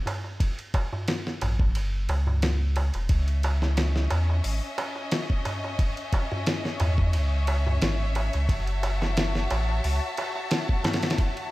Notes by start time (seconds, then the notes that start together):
0.06 ride, darbuka tek, darbuka dum
0.24 darbuka tek
0.40 kick, ride, darbuka tek
0.59 ride
0.74 kick, ride, darbuka tek
0.93 darbuka tek, darbuka dum
1.08 snare, ride, darbuka tek
1.27 snare
1.41 A1, ride, darbuka tek, darbuka dum
1.59 kick, darbuka tek
1.75 F#1, ride, darbuka tek
2.09 C#2, ride, darbuka tek
2.27 darbuka tek, darbuka dum
2.42 snare, ride, darbuka tek
2.76 ride, darbuka tek
2.94 E1, ride, darbuka tek
3.09 C#2 C#4 C#5 D#5 E5, kick, ride, darbuka tek
3.28 ride
3.43 ride, darbuka tek
3.62 snare, darbuka tek
3.77 snare, ride, darbuka tek
3.96 snare
4.10 E2, ride, darbuka tek
4.30 darbuka tek
4.43 G#1, open hi-hat, darbuka tek
4.78 ride, darbuka tek
4.96 darbuka tek
5.11 snare, ride, darbuka tek
5.30 kick
5.45 ride, darbuka tek, darbuka dum
5.64 darbuka tek
5.79 kick, ride, darbuka tek
5.97 ride
6.13 kick, ride, darbuka tek
6.32 darbuka tek, darbuka dum
6.46 snare, ride, darbuka tek
6.65 snare
6.80 E2, ride, darbuka tek, darbuka dum
6.98 kick, darbuka tek
7.13 C#2, ride, darbuka tek
7.47 ride, darbuka tek
7.67 darbuka tek, darbuka dum
7.82 G#1, snare, ride, darbuka tek
8.15 ride, darbuka tek
8.33 C#2, ride, darbuka tek
8.49 F#1 F#4 A5, kick, ride, darbuka tek
8.67 ride
8.83 ride, darbuka tek
9.01 snare, darbuka tek
9.17 snare, ride, darbuka tek
9.35 snare
9.50 A1, ride, darbuka tek
9.69 darbuka tek
9.84 C#2, open hi-hat, darbuka tek
10.17 ride, darbuka tek
10.35 darbuka tek
10.51 snare, ride, darbuka tek
10.69 kick
10.84 snare, ride, darbuka tek, darbuka dum
10.94 snare, ride
11.02 snare, ride, darbuka tek
11.10 snare, ride
11.18 kick, ride, darbuka tek
11.37 ride